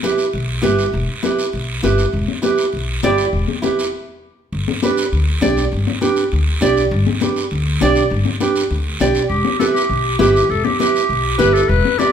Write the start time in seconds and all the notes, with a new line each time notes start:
0.03 E4 G4 B4, high conga, short guiro
0.18 short guiro
0.33 B1, long guiro
0.62 G1 E4 G4 B4, high conga, short guiro
0.79 short guiro
0.93 E1, long guiro
1.23 E4 G4 B4, high conga, short guiro
1.39 short guiro
1.53 B1, long guiro
1.83 G1 E4 G4 B4, high conga, short guiro
1.98 short guiro
2.13 E1, long guiro
2.28 high conga
2.42 E4 G4 B4, high conga, short guiro
2.58 short guiro
2.72 B1, long guiro
3.03 G1 E4 G4 D5, high conga, short guiro
3.18 short guiro
3.33 E1, long guiro
3.48 high conga
3.62 E4 G4 B4, high conga, short guiro
3.79 short guiro
4.52 G1, long guiro
4.68 high conga
4.82 D4 G4 B4, high conga, short guiro
4.97 short guiro
5.12 D2, long guiro
5.41 B1 D4 G4 D5, high conga, short guiro
5.57 short guiro
5.72 G1, long guiro
5.87 high conga
6.01 D4 G4 B4, high conga, short guiro
6.16 short guiro
6.32 D2, long guiro
6.61 B1 D4 G4 D5, high conga, short guiro
6.77 short guiro
6.91 G1, long guiro
7.07 high conga
7.20 D4 G4 B4, high conga, short guiro
7.36 short guiro
7.51 D2, long guiro
7.81 B1 D4 G4 D5, high conga, short guiro
7.95 short guiro
8.10 G1, long guiro
8.25 high conga
8.40 D4 G4 B4, high conga, short guiro
8.56 short guiro
8.71 D2, long guiro
9.00 B1 D4 G4 D5, high conga, short guiro
9.15 short guiro
9.29 E1 G4, long guiro
9.45 high conga
9.59 E4 G4 A4 B4, high conga, short guiro
9.74 G4, short guiro
9.90 B1, long guiro
10.19 G1 E4 G4 B4, high conga, short guiro
10.36 short guiro
10.50 E1 A4, long guiro
10.64 G4, high conga
10.79 E4 G4 B4, high conga, short guiro
10.96 short guiro
11.09 B1, long guiro
11.38 G1 E4 G4 B4, high conga, short guiro
11.54 A4, short guiro
11.69 E1 B4, long guiro
11.85 high conga
11.99 E4 G4 D5, high conga, short guiro